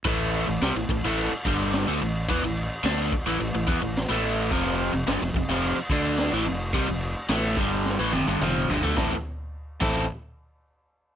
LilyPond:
<<
  \new Staff \with { instrumentName = "Overdriven electric guitar" } { \clef bass \time 4/4 \key a \minor \tempo 4 = 108 <a, e a>8. <a, e>16 <c g>16 <a, e>16 <a, e>16 <a, e a>8 r16 <g, d g>8. <d a>16 <a, e>8 | <e b>16 <a, e>8 r16 <d a d'>8 r16 <a, e>16 <a, e>16 <a, e>16 <e b>16 <a, e>8 <a, e a>8. | <f, c f>8. <f, c>16 <g, d>16 <f, c>16 <f, c>16 <f, c f>8 r16 <d a d'>8. <a, e>16 <f, c>8 | <c g>16 <f, c>8 r16 <a, e a>8 <g, d g>8. <a, e>16 <f, c>16 <g, d>16 <f, c f>8 <g, d>16 <d a>16 |
<a, e a c' e' a'>16 r4 r16 <a, e a c' e' a'>8 r2 | }
  \new Staff \with { instrumentName = "Fingered electric bass" } { \clef bass \time 4/4 \key a \minor a,,8. a,,16 c,16 a,,16 a,,16 a,,8 r16 g,,8. d,16 a,,8 | e,16 a,,8 r16 d,8 r16 a,,16 a,,16 a,,16 e,16 a,,8 a,,8. | f,,8. f,,16 g,,16 f,,16 f,,16 f,,8 r16 d,8. a,,16 f,,8 | c,16 f,,8 r16 a,,8 g,,8. a,,16 f,,16 g,,16 f,,8 g,,16 d,16 |
a,,16 r4 r16 a,,8 r2 | }
  \new DrumStaff \with { instrumentName = "Drums" } \drummode { \time 4/4 <cymc bd>8 cymc8 <cymc sn>8 <cymc bd>8 cymc8 <cymc bd>8 <cymc sn>8 cymc8 | <cymc bd>8 cymc8 <cymc sn>8 <cymc bd>8 cymc8 <cymc bd>8 <cymc sn>8 cymc8 | <cymc bd>16 sn16 cymc8 <cymc sn>8 <cymc bd>8 cymc8 <cymc bd>8 <cymc sn>16 sn16 cymc8 | <cymc bd>8 cymc8 <cymc sn>8 <cymc bd>8 sn8 tommh16 tommh16 toml8 tomfh16 tomfh16 |
<bd sn>4 r8 <cymc bd>8 r4 r4 | }
>>